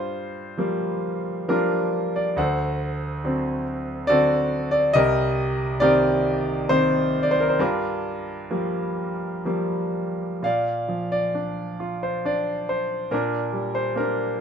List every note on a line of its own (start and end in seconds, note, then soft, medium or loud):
0.00 2.34 G2 soft
0.00 1.45 F4 soft
0.00 1.55 C5 medium
0.57 1.46 F3 soft
0.57 1.46 G3 soft
0.57 1.47 A#3 soft
1.48 2.35 F3 soft
1.48 2.35 G3 soft
1.48 2.36 A#3 soft
1.48 2.35 D4 soft
1.48 2.35 F4 soft
1.48 2.18 A#4 medium
2.16 2.39 D5 medium
2.36 4.91 D2 medium
2.36 3.64 A4 medium
2.36 3.64 C5 soft
2.36 3.63 F#5 medium
3.24 4.07 D3 soft
3.24 4.07 F#3 soft
3.24 4.07 C4 soft
4.07 4.92 D3 soft
4.07 4.92 F#3 soft
4.07 4.93 C4 soft
4.07 4.91 F#4 medium
4.07 4.91 A4 medium
4.07 4.70 D5 medium
4.71 4.95 D5 medium
4.93 7.56 C2 medium
4.93 5.80 G4 medium
4.93 5.80 A#4 medium
4.93 5.83 D#5 loud
5.80 6.67 D#3 soft
5.80 6.67 A#3 soft
5.80 6.67 C4 medium
5.80 7.11 G4 medium
5.80 7.11 A#4 medium
5.80 6.72 D5 medium
6.69 7.57 D#3 medium
6.69 7.57 A#3 soft
6.69 7.57 C4 medium
6.69 7.25 C5 medium
7.23 7.32 D5 medium
7.31 7.41 C5 medium
7.40 7.50 A#4 medium
7.49 7.59 C5 medium
7.59 10.39 G2 medium
7.59 9.44 D4 soft
7.59 9.44 F4 medium
7.59 9.43 A#4 medium
8.51 9.44 F3 soft
8.51 9.44 G3 soft
8.51 9.44 A#3 soft
9.45 10.40 F3 soft
9.45 10.40 G3 soft
9.45 10.40 A#3 soft
10.43 13.08 A#2 soft
10.43 11.10 D5 soft
10.43 11.15 F5 medium
10.88 12.65 F3 soft
11.12 12.06 D5 medium
11.35 12.24 D4 soft
11.80 13.08 F4 soft
12.03 12.24 C5 medium
12.25 13.09 D4 soft
12.25 12.71 D5 medium
12.69 13.13 C5 medium
13.11 14.40 A#2 medium
13.11 13.98 D4 soft
13.11 13.72 A#4 medium
13.53 14.37 G3 soft
13.75 13.95 C5 medium
13.96 14.40 A#3 soft
13.96 14.40 D4 soft
13.96 14.40 A#4 medium